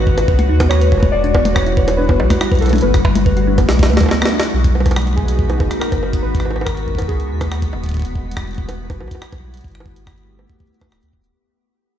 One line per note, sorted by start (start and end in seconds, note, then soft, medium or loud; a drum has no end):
0.00 0.25 G#1 loud
0.00 1.12 G#3 medium
0.00 2.80 F#4 medium
0.00 4.55 F#4 medium
0.00 0.24 B4 loud
0.00 1.12 B4 medium
0.00 4.55 F#5 medium
0.07 0.16 B4 medium
0.07 kick loud
0.17 0.21 F4 medium
0.17 closed hi-hat medium
0.17 high bongo medium
0.28 0.51 C#2 loud
0.28 0.32 B4 loud
0.28 kick loud
0.39 0.42 F#4 medium
0.39 closed hi-hat soft
0.39 high tom medium
0.49 0.93 D#2 medium
0.49 0.55 D#4 medium
0.60 0.69 B3 medium
0.60 kick loud
0.60 cross-stick medium
0.60 closed hi-hat medium
0.60 high bongo medium
0.69 0.74 F#4 medium
0.69 1.14 C#5 loud
0.69 cross-stick loud
0.81 0.90 B4 medium
0.81 closed hi-hat medium
0.92 1.10 D#1 loud
0.92 0.96 F4 medium
0.92 kick loud
0.92 high bongo soft
0.95 high bongo soft
0.97 high bongo soft
1.00 1.06 B4 loud
1.00 kick loud
1.00 high tom loud
1.00 high bongo soft
1.12 2.21 E1 loud
1.12 2.82 G3 medium
1.12 2.82 E4 medium
1.12 1.17 F#4 medium
1.12 1.52 D5 loud
1.24 1.30 D4 medium
1.24 closed hi-hat medium
1.34 1.43 B3 medium
1.34 kick loud
1.34 high bongo medium
1.45 1.49 F#4 medium
1.45 closed hi-hat medium
1.45 high tom loud
1.54 1.65 B4 medium
1.54 1.99 C#5 loud
1.54 kick loud
1.54 cross-stick loud
1.66 1.70 E4 medium
1.66 closed hi-hat soft
1.77 1.81 B4 loud
1.77 kick loud
1.88 1.91 F#4 medium
1.88 closed hi-hat medium
1.88 high bongo medium
1.97 2.04 D4 medium
1.97 2.37 B4 loud
2.09 2.18 B3 medium
2.09 kick loud
2.09 high bongo medium
2.20 2.28 B1 loud
2.20 2.23 F#4 medium
2.20 high bongo medium
2.30 2.39 B4 medium
2.30 kick loud
2.30 cross-stick medium
2.30 closed hi-hat medium
2.30 high tom loud
2.41 2.45 E4 medium
2.41 cross-stick loud
2.52 2.81 B1 medium
2.52 2.55 B4 loud
2.52 kick loud
2.52 closed hi-hat soft
2.55 closed hi-hat soft
2.59 2.66 F#4 medium
2.59 2.83 A4 medium
2.59 closed hi-hat soft
2.62 closed hi-hat soft
2.62 high bongo soft
2.65 closed hi-hat soft
2.65 high bongo soft
2.68 closed hi-hat soft
2.68 high bongo soft
2.70 2.79 D4 medium
2.70 closed hi-hat soft
2.70 high tom loud
2.70 high bongo soft
2.76 closed hi-hat soft
2.78 closed hi-hat soft
2.81 3.66 G1 loud
2.81 4.52 G3 medium
2.81 4.52 A3 medium
2.81 2.92 B3 medium
2.81 4.52 B3 medium
2.81 4.06 B4 loud
2.81 closed hi-hat medium
2.94 2.98 F#4 medium
2.94 kick loud
2.94 cross-stick medium
2.94 closed hi-hat medium
3.05 3.14 B4 medium
3.05 kick loud
3.05 high bongo medium
3.15 3.19 E4 medium
3.15 closed hi-hat medium
3.15 high tom loud
3.26 3.30 B4 loud
3.26 kick loud
3.37 3.40 F#4 medium
3.37 closed hi-hat soft
3.47 3.53 D4 medium
3.58 3.67 B3 medium
3.58 kick loud
3.58 closed hi-hat medium
3.58 high bongo medium
3.69 3.91 B1 loud
3.69 3.72 F#4 medium
3.69 snare medium
3.79 3.88 B4 medium
3.79 kick loud
3.79 snare medium
3.79 closed hi-hat soft
3.79 high tom soft
3.83 high tom soft
3.86 4.07 D2 medium
3.86 3.96 B4 medium
3.86 high tom medium
3.90 high tom medium
3.93 snare medium
3.93 high tom medium
3.97 4.04 A3 medium
3.97 kick loud
3.97 closed hi-hat medium
3.97 high tom medium
3.97 high bongo soft
4.03 high bongo soft
4.06 high bongo medium
4.09 4.15 B3 medium
4.09 snare medium
4.09 high bongo medium
4.22 4.25 B3 medium
4.22 cross-stick loud
4.22 snare loud
4.27 high bongo soft
4.33 4.41 D4 medium
4.40 4.49 E4 medium
4.40 snare loud
4.40 closed hi-hat medium
4.54 5.62 B1 loud
4.54 6.22 B3 medium
4.54 11.35 B3 medium
4.54 6.22 D#4 medium
4.54 7.91 F#4 medium
4.54 11.35 B6 medium
4.64 kick loud
4.64 closed hi-hat medium
4.75 high bongo soft
4.80 high bongo soft
4.86 kick loud
4.86 closed hi-hat medium
4.86 high bongo medium
4.91 closed hi-hat medium
4.91 high bongo medium
4.96 cross-stick loud
4.96 closed hi-hat soft
5.02 closed hi-hat soft
5.07 closed hi-hat soft
5.16 5.83 G#4 medium
5.16 kick loud
5.28 closed hi-hat medium
5.39 kick loud
5.50 closed hi-hat soft
5.50 high bongo medium
5.60 5.69 F#1 loud
5.60 kick loud
5.60 high bongo medium
5.71 cross-stick medium
5.71 closed hi-hat medium
5.80 6.20 A#4 loud
5.80 cross-stick loud
5.92 6.21 F#1 medium
5.92 kick loud
5.92 closed hi-hat medium
5.92 high bongo medium
6.03 high bongo soft
6.13 kick loud
6.13 closed hi-hat medium
6.23 7.06 G#1 loud
6.23 7.92 G#3 medium
6.23 7.92 B3 medium
6.23 6.63 B4 loud
6.35 kick loud
6.35 closed hi-hat medium
6.40 cross-stick medium
6.45 high bongo soft
6.51 high bongo soft
6.56 high bongo medium
6.61 7.10 A#4 loud
6.61 high bongo medium
6.67 kick loud
6.67 cross-stick loud
6.67 closed hi-hat medium
6.77 closed hi-hat soft
6.88 kick soft
6.95 kick medium
6.95 closed hi-hat medium
6.95 high bongo medium
7.02 kick medium
7.08 7.32 C#2 medium
7.08 7.68 G#4 medium
7.08 kick loud
7.20 closed hi-hat soft
7.30 7.74 D#2 medium
7.41 kick loud
7.41 cross-stick medium
7.41 closed hi-hat medium
7.41 high bongo medium
7.52 cross-stick loud
7.62 kick loud
7.62 closed hi-hat medium
7.73 7.90 D#1 medium
7.73 high bongo soft
7.84 kick medium
7.84 closed hi-hat medium
7.86 kick medium
7.86 closed hi-hat medium
7.89 kick medium
7.92 9.02 E1 medium
7.92 kick medium
7.94 9.63 G3 medium
7.94 9.63 E4 medium
7.94 9.63 F#4 medium
7.94 kick medium
7.94 closed hi-hat soft
7.97 kick medium
8.00 kick loud
8.00 closed hi-hat soft
8.02 kick loud
8.02 closed hi-hat medium
8.15 kick loud
8.31 closed hi-hat medium
8.37 kick loud
8.37 cross-stick loud
8.47 closed hi-hat soft
8.51 closed hi-hat soft
8.54 kick loud
8.54 closed hi-hat soft
8.69 closed hi-hat medium
8.69 high bongo soft
8.90 kick loud
8.90 closed hi-hat soft
8.90 high bongo medium
9.01 9.09 B1 medium
9.01 high bongo soft
9.08 kick loud
9.08 closed hi-hat medium
9.08 high bongo soft
9.15 high bongo soft
9.22 cross-stick loud
9.32 9.61 B1 medium
9.32 kick loud
9.32 closed hi-hat medium
9.32 high bongo soft
9.54 closed hi-hat medium
9.57 closed hi-hat soft
9.61 11.33 A3 medium
9.61 11.33 B3 medium
9.61 11.33 G4 medium
9.61 closed hi-hat soft
9.64 10.47 G1 medium
9.64 kick loud
9.64 closed hi-hat soft
9.68 closed hi-hat soft
9.71 cross-stick medium
9.71 closed hi-hat soft
9.80 high bongo medium
9.86 kick loud
9.96 closed hi-hat medium
10.07 kick loud
10.07 cross-stick loud
10.18 closed hi-hat soft
10.39 high bongo soft
10.50 kick loud
10.60 kick loud
10.60 closed hi-hat soft
10.67 closed hi-hat soft
10.74 closed hi-hat soft
10.81 kick loud
10.81 cross-stick medium
10.81 high bongo medium
10.92 11.01 D1 medium
10.92 cross-stick loud
11.03 11.11 D2 loud
11.03 closed hi-hat soft
11.13 11.31 D1 medium
11.13 kick loud
11.24 closed hi-hat medium